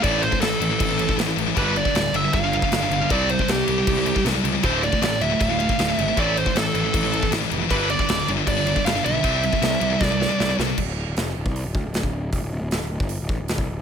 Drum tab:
CC |x-x-x-x-x-x-x-x-|x-x-x-x-x-x-x-x-|x-x-x-x-x-x-x-x-|x-x-x-x-x-x-x-x-|
HH |----------------|----------------|----------------|----------------|
SD |----o-------o---|----o-------o---|----o-------o---|----o-------o---|
BD |o--o----o--o----|o--o----o--o----|o--o----o--o----|o--o----o--o----|

CC |x-x-x-x-x-x-x-x-|x-x-x-x-x-x-x-x-|x-x-x-x---------|x---------------|
HH |----------------|----------------|----------------|----o---o---o---|
SD |----o-------o---|----o-------o---|----o---o-o-o-o-|----o-------o---|
BD |o--o----o--o----|o--o----o--o----|o--o----o-------|o------o--o--o--|

CC |----------------|
HH |o---o---o---o---|
SD |----o-------o---|
BD |o------o--o--o--|